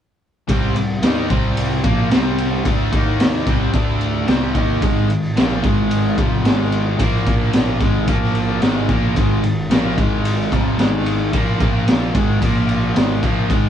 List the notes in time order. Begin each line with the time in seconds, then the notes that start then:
0.48 C2 C3 G3 C4, kick, ride
0.75 C2 C3 G3, ride
1.02 D#2 D#3 A#3 D#4, snare, ride
1.29 C2 C3 G3 C4, kick, ride
1.57 ride
1.83 A#1 A#2 F3 A#3, kick, ride
2.10 C2 C3 G3 C4, snare, ride
2.38 ride
2.64 D2 D3 A3 D4, kick, ride
2.92 D#2 D#3 A#3 D#4, kick, ride
3.20 snare, ride
3.47 C2 C3 G3 C4, kick, ride
3.73 D2 D3 A3 D4, kick, ride
4.01 ride
4.27 C2 C3 G3 C4, snare, ride
4.54 D#2 D#3 A#3 D#4, kick, ride
4.81 G#1 G#2 D#3 G#3, kick, ride
5.09 G#1 G#2 D#3, ride
5.36 A#1 A#2 F3 A#3, snare, ride
5.63 G#1 G#2 D#3 G#3, kick, ride
5.91 ride
6.17 F1 F2 C3 F3, kick, ride
6.44 G#1 G#2 D#3 G#3, snare, ride
6.72 ride
6.98 A#1 A#2 F3 A#3, kick, ride
7.26 A#1 A#2 F3 A#3, kick, ride
7.53 snare, ride
7.80 G#1 G#2 D#3 G#3, kick, ride
8.07 A#1 A#2 F3 A#3, kick, ride
8.35 ride
8.61 G#1 G#2 D#3 G#3, snare, ride
8.88 A#1 A#2 F3 A#3, kick, ride
9.15 G#1 G#2 D#3 G#3, kick, ride
9.43 G#1 G#2 D#3, ride
9.70 A#1 A#2 F3 A#3, snare, ride
9.96 G#1 G#2 D#3 G#3, kick, ride
10.25 ride
10.51 F1 F2 C3 F3, kick, snare, ride
10.79 G#1 G#2 D#3 G#3, snare, ride
11.06 ride
11.33 A#1 A#2 F3 A#3, kick, ride
11.60 A#1 A#2 F3 A#3, kick, ride
11.88 snare, ride
12.14 G#1 G#2 D#3 G#3, kick, ride
12.41 A#1 A#2 F3 A#3, kick, ride
12.69 ride
12.96 G#1 G#2 D#3 G#3, snare, ride
13.22 A#1 A#2 F3 A#3, kick, ride
13.49 G#1 G#2 D#3 G#3, kick, ride